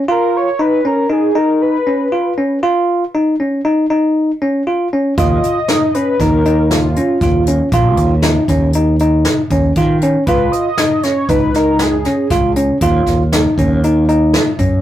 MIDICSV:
0, 0, Header, 1, 5, 480
1, 0, Start_track
1, 0, Tempo, 509338
1, 86, Time_signature, 5, 2, 24, 8
1, 13961, End_track
2, 0, Start_track
2, 0, Title_t, "Analog synth lead"
2, 0, Program_c, 0, 81
2, 101, Note_on_c, 0, 70, 90
2, 347, Note_on_c, 0, 73, 96
2, 361, Note_off_c, 0, 70, 0
2, 572, Note_on_c, 0, 71, 90
2, 586, Note_off_c, 0, 73, 0
2, 814, Note_on_c, 0, 70, 83
2, 829, Note_off_c, 0, 71, 0
2, 1057, Note_on_c, 0, 68, 76
2, 1071, Note_off_c, 0, 70, 0
2, 1297, Note_on_c, 0, 70, 77
2, 1311, Note_off_c, 0, 68, 0
2, 1520, Note_off_c, 0, 70, 0
2, 1526, Note_on_c, 0, 71, 80
2, 2210, Note_off_c, 0, 71, 0
2, 4889, Note_on_c, 0, 75, 103
2, 5603, Note_on_c, 0, 71, 92
2, 5617, Note_off_c, 0, 75, 0
2, 5855, Note_on_c, 0, 70, 86
2, 5869, Note_off_c, 0, 71, 0
2, 6331, Note_on_c, 0, 65, 80
2, 6345, Note_off_c, 0, 70, 0
2, 7052, Note_off_c, 0, 65, 0
2, 9671, Note_on_c, 0, 71, 90
2, 9912, Note_on_c, 0, 75, 98
2, 9926, Note_off_c, 0, 71, 0
2, 10397, Note_on_c, 0, 73, 86
2, 10411, Note_off_c, 0, 75, 0
2, 10638, Note_on_c, 0, 71, 89
2, 10652, Note_off_c, 0, 73, 0
2, 10889, Note_on_c, 0, 70, 90
2, 10903, Note_off_c, 0, 71, 0
2, 11130, Note_off_c, 0, 70, 0
2, 11135, Note_on_c, 0, 68, 73
2, 11579, Note_off_c, 0, 68, 0
2, 13961, End_track
3, 0, Start_track
3, 0, Title_t, "Tine electric piano"
3, 0, Program_c, 1, 4
3, 79, Note_on_c, 1, 65, 79
3, 458, Note_off_c, 1, 65, 0
3, 559, Note_on_c, 1, 63, 73
3, 750, Note_off_c, 1, 63, 0
3, 802, Note_on_c, 1, 61, 63
3, 992, Note_off_c, 1, 61, 0
3, 1033, Note_on_c, 1, 63, 69
3, 1226, Note_off_c, 1, 63, 0
3, 1276, Note_on_c, 1, 63, 75
3, 1656, Note_off_c, 1, 63, 0
3, 1759, Note_on_c, 1, 61, 59
3, 1950, Note_off_c, 1, 61, 0
3, 1999, Note_on_c, 1, 65, 65
3, 2190, Note_off_c, 1, 65, 0
3, 2241, Note_on_c, 1, 61, 59
3, 2432, Note_off_c, 1, 61, 0
3, 2479, Note_on_c, 1, 65, 83
3, 2858, Note_off_c, 1, 65, 0
3, 2964, Note_on_c, 1, 63, 68
3, 3154, Note_off_c, 1, 63, 0
3, 3205, Note_on_c, 1, 61, 53
3, 3394, Note_off_c, 1, 61, 0
3, 3438, Note_on_c, 1, 63, 73
3, 3631, Note_off_c, 1, 63, 0
3, 3678, Note_on_c, 1, 63, 72
3, 4058, Note_off_c, 1, 63, 0
3, 4164, Note_on_c, 1, 61, 62
3, 4354, Note_off_c, 1, 61, 0
3, 4403, Note_on_c, 1, 65, 66
3, 4593, Note_off_c, 1, 65, 0
3, 4647, Note_on_c, 1, 61, 62
3, 4836, Note_off_c, 1, 61, 0
3, 4879, Note_on_c, 1, 65, 73
3, 5259, Note_off_c, 1, 65, 0
3, 5369, Note_on_c, 1, 63, 72
3, 5557, Note_off_c, 1, 63, 0
3, 5613, Note_on_c, 1, 61, 54
3, 5800, Note_off_c, 1, 61, 0
3, 5849, Note_on_c, 1, 63, 68
3, 6037, Note_off_c, 1, 63, 0
3, 6087, Note_on_c, 1, 63, 74
3, 6464, Note_off_c, 1, 63, 0
3, 6571, Note_on_c, 1, 61, 57
3, 6759, Note_off_c, 1, 61, 0
3, 6810, Note_on_c, 1, 65, 62
3, 6998, Note_off_c, 1, 65, 0
3, 7050, Note_on_c, 1, 61, 64
3, 7239, Note_off_c, 1, 61, 0
3, 7289, Note_on_c, 1, 65, 80
3, 7666, Note_off_c, 1, 65, 0
3, 7758, Note_on_c, 1, 63, 70
3, 7951, Note_off_c, 1, 63, 0
3, 8006, Note_on_c, 1, 61, 65
3, 8196, Note_off_c, 1, 61, 0
3, 8248, Note_on_c, 1, 63, 70
3, 8437, Note_off_c, 1, 63, 0
3, 8491, Note_on_c, 1, 63, 74
3, 8867, Note_off_c, 1, 63, 0
3, 8970, Note_on_c, 1, 61, 67
3, 9159, Note_off_c, 1, 61, 0
3, 9213, Note_on_c, 1, 65, 68
3, 9400, Note_off_c, 1, 65, 0
3, 9451, Note_on_c, 1, 61, 70
3, 9639, Note_off_c, 1, 61, 0
3, 9693, Note_on_c, 1, 65, 79
3, 10068, Note_off_c, 1, 65, 0
3, 10170, Note_on_c, 1, 63, 64
3, 10358, Note_off_c, 1, 63, 0
3, 10406, Note_on_c, 1, 61, 55
3, 10596, Note_off_c, 1, 61, 0
3, 10645, Note_on_c, 1, 63, 65
3, 10835, Note_off_c, 1, 63, 0
3, 10890, Note_on_c, 1, 63, 76
3, 11266, Note_off_c, 1, 63, 0
3, 11365, Note_on_c, 1, 61, 58
3, 11555, Note_off_c, 1, 61, 0
3, 11601, Note_on_c, 1, 65, 72
3, 11792, Note_off_c, 1, 65, 0
3, 11842, Note_on_c, 1, 61, 68
3, 12032, Note_off_c, 1, 61, 0
3, 12085, Note_on_c, 1, 65, 82
3, 12461, Note_off_c, 1, 65, 0
3, 12566, Note_on_c, 1, 63, 66
3, 12754, Note_off_c, 1, 63, 0
3, 12807, Note_on_c, 1, 61, 58
3, 12995, Note_off_c, 1, 61, 0
3, 13047, Note_on_c, 1, 63, 69
3, 13234, Note_off_c, 1, 63, 0
3, 13277, Note_on_c, 1, 63, 72
3, 13655, Note_off_c, 1, 63, 0
3, 13753, Note_on_c, 1, 61, 55
3, 13945, Note_off_c, 1, 61, 0
3, 13961, End_track
4, 0, Start_track
4, 0, Title_t, "Fretless electric bass"
4, 0, Program_c, 2, 35
4, 4879, Note_on_c, 2, 39, 89
4, 5065, Note_off_c, 2, 39, 0
4, 5838, Note_on_c, 2, 39, 79
4, 6569, Note_off_c, 2, 39, 0
4, 6797, Note_on_c, 2, 39, 69
4, 7165, Note_off_c, 2, 39, 0
4, 7276, Note_on_c, 2, 34, 96
4, 7513, Note_off_c, 2, 34, 0
4, 7513, Note_on_c, 2, 39, 77
4, 7883, Note_off_c, 2, 39, 0
4, 7994, Note_on_c, 2, 39, 85
4, 8726, Note_off_c, 2, 39, 0
4, 8956, Note_on_c, 2, 39, 70
4, 9144, Note_off_c, 2, 39, 0
4, 9198, Note_on_c, 2, 51, 76
4, 9566, Note_off_c, 2, 51, 0
4, 9679, Note_on_c, 2, 37, 85
4, 9865, Note_off_c, 2, 37, 0
4, 10637, Note_on_c, 2, 37, 74
4, 11367, Note_off_c, 2, 37, 0
4, 11597, Note_on_c, 2, 37, 76
4, 11964, Note_off_c, 2, 37, 0
4, 12073, Note_on_c, 2, 39, 91
4, 12261, Note_off_c, 2, 39, 0
4, 12310, Note_on_c, 2, 39, 66
4, 12679, Note_off_c, 2, 39, 0
4, 12795, Note_on_c, 2, 39, 89
4, 13523, Note_off_c, 2, 39, 0
4, 13748, Note_on_c, 2, 42, 63
4, 13961, Note_off_c, 2, 42, 0
4, 13961, End_track
5, 0, Start_track
5, 0, Title_t, "Drums"
5, 4877, Note_on_c, 9, 42, 75
5, 4879, Note_on_c, 9, 36, 103
5, 4971, Note_off_c, 9, 42, 0
5, 4973, Note_off_c, 9, 36, 0
5, 5122, Note_on_c, 9, 42, 48
5, 5216, Note_off_c, 9, 42, 0
5, 5357, Note_on_c, 9, 38, 94
5, 5357, Note_on_c, 9, 42, 70
5, 5451, Note_off_c, 9, 38, 0
5, 5451, Note_off_c, 9, 42, 0
5, 5602, Note_on_c, 9, 42, 53
5, 5697, Note_off_c, 9, 42, 0
5, 5840, Note_on_c, 9, 36, 80
5, 5842, Note_on_c, 9, 38, 28
5, 5842, Note_on_c, 9, 42, 61
5, 5934, Note_off_c, 9, 36, 0
5, 5936, Note_off_c, 9, 38, 0
5, 5936, Note_off_c, 9, 42, 0
5, 6081, Note_on_c, 9, 42, 49
5, 6176, Note_off_c, 9, 42, 0
5, 6321, Note_on_c, 9, 38, 99
5, 6321, Note_on_c, 9, 42, 67
5, 6415, Note_off_c, 9, 38, 0
5, 6415, Note_off_c, 9, 42, 0
5, 6561, Note_on_c, 9, 42, 58
5, 6655, Note_off_c, 9, 42, 0
5, 6796, Note_on_c, 9, 42, 68
5, 6797, Note_on_c, 9, 36, 96
5, 6891, Note_off_c, 9, 36, 0
5, 6891, Note_off_c, 9, 42, 0
5, 7035, Note_on_c, 9, 42, 56
5, 7129, Note_off_c, 9, 42, 0
5, 7274, Note_on_c, 9, 42, 74
5, 7276, Note_on_c, 9, 36, 91
5, 7368, Note_off_c, 9, 42, 0
5, 7370, Note_off_c, 9, 36, 0
5, 7512, Note_on_c, 9, 42, 57
5, 7514, Note_on_c, 9, 36, 66
5, 7606, Note_off_c, 9, 42, 0
5, 7608, Note_off_c, 9, 36, 0
5, 7750, Note_on_c, 9, 38, 97
5, 7750, Note_on_c, 9, 42, 75
5, 7844, Note_off_c, 9, 38, 0
5, 7844, Note_off_c, 9, 42, 0
5, 7994, Note_on_c, 9, 36, 62
5, 7994, Note_on_c, 9, 38, 29
5, 7994, Note_on_c, 9, 42, 61
5, 8088, Note_off_c, 9, 36, 0
5, 8088, Note_off_c, 9, 38, 0
5, 8088, Note_off_c, 9, 42, 0
5, 8228, Note_on_c, 9, 42, 65
5, 8322, Note_off_c, 9, 42, 0
5, 8474, Note_on_c, 9, 42, 50
5, 8568, Note_off_c, 9, 42, 0
5, 8715, Note_on_c, 9, 38, 98
5, 8715, Note_on_c, 9, 42, 73
5, 8809, Note_off_c, 9, 38, 0
5, 8809, Note_off_c, 9, 42, 0
5, 8955, Note_on_c, 9, 42, 52
5, 8958, Note_on_c, 9, 36, 65
5, 9049, Note_off_c, 9, 42, 0
5, 9052, Note_off_c, 9, 36, 0
5, 9194, Note_on_c, 9, 42, 62
5, 9198, Note_on_c, 9, 36, 89
5, 9288, Note_off_c, 9, 42, 0
5, 9292, Note_off_c, 9, 36, 0
5, 9438, Note_on_c, 9, 42, 54
5, 9532, Note_off_c, 9, 42, 0
5, 9675, Note_on_c, 9, 42, 66
5, 9679, Note_on_c, 9, 36, 86
5, 9769, Note_off_c, 9, 42, 0
5, 9773, Note_off_c, 9, 36, 0
5, 9922, Note_on_c, 9, 42, 49
5, 10016, Note_off_c, 9, 42, 0
5, 10155, Note_on_c, 9, 38, 99
5, 10155, Note_on_c, 9, 42, 73
5, 10250, Note_off_c, 9, 38, 0
5, 10250, Note_off_c, 9, 42, 0
5, 10397, Note_on_c, 9, 38, 29
5, 10397, Note_on_c, 9, 42, 53
5, 10491, Note_off_c, 9, 38, 0
5, 10491, Note_off_c, 9, 42, 0
5, 10638, Note_on_c, 9, 36, 88
5, 10639, Note_on_c, 9, 42, 64
5, 10732, Note_off_c, 9, 36, 0
5, 10733, Note_off_c, 9, 42, 0
5, 10878, Note_on_c, 9, 38, 30
5, 10878, Note_on_c, 9, 42, 49
5, 10972, Note_off_c, 9, 38, 0
5, 10972, Note_off_c, 9, 42, 0
5, 11112, Note_on_c, 9, 38, 99
5, 11112, Note_on_c, 9, 42, 80
5, 11206, Note_off_c, 9, 38, 0
5, 11206, Note_off_c, 9, 42, 0
5, 11354, Note_on_c, 9, 38, 27
5, 11354, Note_on_c, 9, 42, 50
5, 11448, Note_off_c, 9, 38, 0
5, 11448, Note_off_c, 9, 42, 0
5, 11594, Note_on_c, 9, 38, 29
5, 11594, Note_on_c, 9, 42, 84
5, 11595, Note_on_c, 9, 36, 91
5, 11688, Note_off_c, 9, 38, 0
5, 11688, Note_off_c, 9, 42, 0
5, 11690, Note_off_c, 9, 36, 0
5, 11835, Note_on_c, 9, 42, 57
5, 11929, Note_off_c, 9, 42, 0
5, 12070, Note_on_c, 9, 42, 80
5, 12074, Note_on_c, 9, 36, 83
5, 12165, Note_off_c, 9, 42, 0
5, 12168, Note_off_c, 9, 36, 0
5, 12313, Note_on_c, 9, 38, 30
5, 12313, Note_on_c, 9, 42, 54
5, 12314, Note_on_c, 9, 36, 60
5, 12408, Note_off_c, 9, 36, 0
5, 12408, Note_off_c, 9, 38, 0
5, 12408, Note_off_c, 9, 42, 0
5, 12557, Note_on_c, 9, 38, 93
5, 12557, Note_on_c, 9, 42, 73
5, 12651, Note_off_c, 9, 38, 0
5, 12651, Note_off_c, 9, 42, 0
5, 12795, Note_on_c, 9, 36, 64
5, 12799, Note_on_c, 9, 42, 55
5, 12889, Note_off_c, 9, 36, 0
5, 12894, Note_off_c, 9, 42, 0
5, 13038, Note_on_c, 9, 42, 62
5, 13132, Note_off_c, 9, 42, 0
5, 13275, Note_on_c, 9, 42, 47
5, 13369, Note_off_c, 9, 42, 0
5, 13510, Note_on_c, 9, 38, 95
5, 13510, Note_on_c, 9, 42, 71
5, 13604, Note_off_c, 9, 38, 0
5, 13604, Note_off_c, 9, 42, 0
5, 13747, Note_on_c, 9, 42, 47
5, 13749, Note_on_c, 9, 36, 70
5, 13841, Note_off_c, 9, 42, 0
5, 13843, Note_off_c, 9, 36, 0
5, 13961, End_track
0, 0, End_of_file